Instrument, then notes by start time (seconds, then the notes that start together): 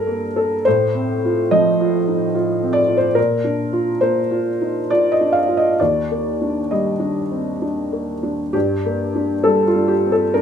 felt piano
Already playing: G2 G3 A#3 G4 A4 A#4
0.07 A#3
0.36 A4
0.65 A2 C5
0.95 C4
1.25 F4
1.51 F3 D#5
1.81 F4
2.08 D#4
2.35 F4
2.63 C4
2.73 D5
2.88 F4
2.97 C5
3.15 A#2 A#4
3.44 D4
3.73 F4
4.01 A#3 C5
4.31 F4
4.61 D#4
4.90 F4 D5
5.12 D#5
5.21 D4
5.33 F5
5.48 F4
5.57 D#5
5.80 D#2 D5
6.11 A#3
6.42 D4
6.71 G3 D#5
7.00 D4
7.31 C4
7.62 D4
7.92 A#3
8.23 D4
8.53 G2 G4
8.85 A#3
9.15 D4
9.44 G3 A4
9.67 F4
9.76 D4
9.88 G4
10.06 C4
10.12 A4
10.34 D4 A#4